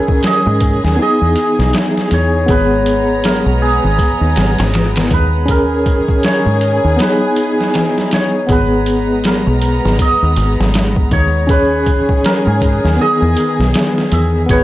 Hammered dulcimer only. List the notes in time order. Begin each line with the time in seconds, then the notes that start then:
Already playing: B4 E5 G#5
0.26 D#5
1.02 D#5
2.14 C#5
2.50 B4
3.25 A#4
3.62 G#4
5.14 B4
5.51 A#4
6.26 C#5
7.01 B4
8.14 C#5
8.52 B4
9.27 A#4
10.02 D#5
11.13 C#5
11.50 B4
12.25 A#4
13.01 D#5
14.13 E5
14.51 C#5